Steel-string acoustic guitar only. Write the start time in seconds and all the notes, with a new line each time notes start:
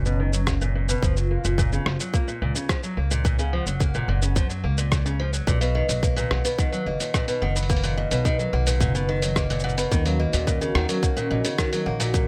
0.06 B2
0.20 D#3
0.33 F#3
0.47 A#3
0.61 A#2
0.75 A#2
0.89 B2
1.03 F3
1.17 F#3
1.31 A#3
1.45 A#2
1.59 A#2
1.73 C#3
1.86 F3
2.01 F#3
2.14 A#3
2.28 A#2
2.42 A#2
2.55 C#3
2.69 F3
2.83 F#3
2.97 A#3
3.11 A#2
3.25 A#2
3.39 C#3
3.53 F3
3.67 F#3
3.81 A#3
3.95 A#2
4.09 A#2
4.22 C#3
4.36 F3
4.50 F#3
4.64 A#3
4.78 A#2
4.92 A#2
5.06 C#3
5.20 F3
5.33 F#3
5.47 A#2
5.61 B2
5.75 D#3
5.89 F#3
6.03 A#3
6.16 A#2
6.31 A#2
6.45 B2
6.58 D#3
6.72 F#3
6.86 A#3
7.00 A#2
7.14 A#2
7.28 B2
7.42 D#3
7.56 F#3
7.70 A#3
7.83 A#2
7.97 A#2
8.12 B2
8.25 D#3
8.39 F#3
8.53 A#3
8.67 A#2
8.81 A#2
8.95 B2
9.09 D#3
9.23 F#3
9.36 A#3
9.50 A#2
9.64 A#2
9.78 B2
9.92 D#3
10.06 F#3
10.20 A#3
10.34 A#2
10.47 A#2
10.61 C#3
10.75 D#3
10.89 F#3
11.03 A#3
11.17 A#2
11.31 A#2
11.45 C#3
11.58 D#3
11.73 F#3
11.86 A#3
12.00 A#2
12.14 A#2